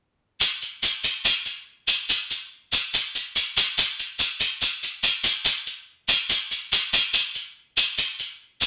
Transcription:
0.41 shaker soft
0.62 shaker soft
0.83 shaker soft
1.04 shaker medium
1.25 shaker soft
1.46 shaker soft
1.88 shaker soft
2.09 shaker medium
2.30 shaker soft
2.73 shaker medium
2.94 shaker soft
3.15 shaker soft
3.36 shaker soft
3.57 shaker medium
3.78 shaker medium
3.99 shaker soft
4.19 shaker soft
4.40 shaker medium
4.62 shaker soft
4.83 shaker soft
5.03 shaker soft
5.24 shaker medium
5.45 shaker medium
5.67 shaker soft
6.09 shaker medium
6.30 shaker medium
6.51 shaker soft
6.72 shaker soft
6.93 shaker medium
7.14 shaker medium
7.35 shaker soft
7.77 shaker medium
7.98 shaker medium
8.19 shaker soft
8.61 shaker soft

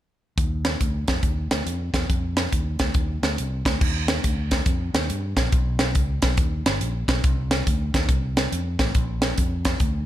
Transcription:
0.38 0.74 D#2 medium
0.38 kick loud
0.38 closed hi-hat medium
0.65 snare loud
0.65 closed hi-hat medium
0.81 1.04 D2 medium
0.81 kick medium
0.81 closed hi-hat medium
1.08 1.21 F2 medium
1.08 kick medium
1.08 snare medium
1.08 closed hi-hat medium
1.23 1.46 D#2 medium
1.23 kick medium
1.23 closed hi-hat medium
1.51 1.64 D2 medium
1.51 snare loud
1.51 closed hi-hat medium
1.66 1.89 F2 medium
1.66 closed hi-hat medium
1.94 2.07 E2 medium
1.94 kick medium
1.94 snare medium
1.94 closed hi-hat medium
2.10 2.46 F2 medium
2.10 kick loud
2.10 closed hi-hat medium
2.37 snare loud
2.37 closed hi-hat medium
2.53 2.76 D#2 medium
2.53 kick medium
2.53 closed hi-hat loud
2.79 2.93 D2 medium
2.79 kick medium
2.79 snare loud
2.79 closed hi-hat medium
2.94 3.18 D#2 medium
2.94 kick loud
2.94 closed hi-hat medium
3.23 3.36 D2 medium
3.23 snare loud
3.23 closed hi-hat medium
3.38 3.62 C2 medium
3.38 closed hi-hat medium
3.65 3.79 D2 medium
3.65 kick medium
3.65 snare loud
3.65 closed hi-hat medium
3.81 4.18 D#2 loud
3.81 kick loud
3.81 crash medium
4.08 snare loud
4.08 closed hi-hat medium
4.24 4.61 D2 medium
4.24 kick medium
4.24 closed hi-hat loud
4.51 kick medium
4.51 snare loud
4.51 closed hi-hat medium
4.66 4.90 F2 medium
4.66 kick loud
4.66 closed hi-hat medium
4.94 5.07 D#2 medium
4.94 snare loud
4.94 closed hi-hat medium
5.10 5.33 G2 loud
5.10 closed hi-hat medium
5.37 5.50 A#1 medium
5.37 kick medium
5.37 snare loud
5.37 closed hi-hat medium
5.52 5.96 B1 loud
5.52 kick loud
5.52 closed hi-hat medium
5.79 snare loud
5.79 closed hi-hat medium
5.95 6.19 C#2 medium
5.95 kick medium
5.95 closed hi-hat medium
6.22 6.36 B1 medium
6.22 kick medium
6.22 snare loud
6.22 closed hi-hat medium
6.37 6.61 D#2 loud
6.37 kick loud
6.37 closed hi-hat medium
6.65 6.79 G1 medium
6.65 snare loud
6.65 closed hi-hat medium
6.81 7.04 A#1 medium
6.81 closed hi-hat medium
7.08 7.21 B1 medium
7.08 kick medium
7.08 snare loud
7.08 closed hi-hat medium
7.24 7.61 C2 loud
7.24 kick loud
7.24 closed hi-hat medium
7.51 snare loud
7.51 closed hi-hat medium
7.67 7.90 D2 medium
7.67 kick medium
7.67 closed hi-hat loud
7.94 8.07 D#2 medium
7.94 kick medium
7.94 snare loud
7.94 closed hi-hat medium
8.09 8.46 C2 medium
8.09 kick loud
8.09 closed hi-hat medium
8.37 snare loud
8.37 closed hi-hat medium
8.52 8.75 F2 medium
8.52 closed hi-hat medium
8.79 8.93 A1 medium
8.79 kick medium
8.79 snare loud
8.79 closed hi-hat medium
8.95 9.32 A#1 medium
8.95 kick loud
8.95 closed hi-hat medium
9.22 snare loud
9.22 closed hi-hat medium
9.38 9.75 F2 loud
9.38 kick medium
9.38 closed hi-hat loud
9.65 kick medium
9.65 snare loud
9.65 closed hi-hat medium
9.80 10.04 D2 medium
9.80 kick loud
9.80 closed hi-hat medium

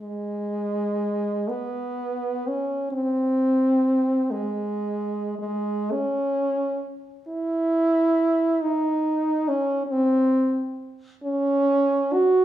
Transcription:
0.00 1.51 G#3 medium
1.49 2.49 B3 medium
2.47 2.92 C#4 soft
2.92 4.32 C4 medium
4.31 5.38 G#3 soft
5.39 5.93 G#3 soft
5.91 7.03 C#4 medium
7.28 8.63 E4 medium
8.62 9.50 D#4 medium
9.48 9.85 C#4 medium
9.86 9.93 C#4 soft
9.92 10.78 C4 medium
11.23 12.15 C#4 medium
12.13 12.45 F#4 medium

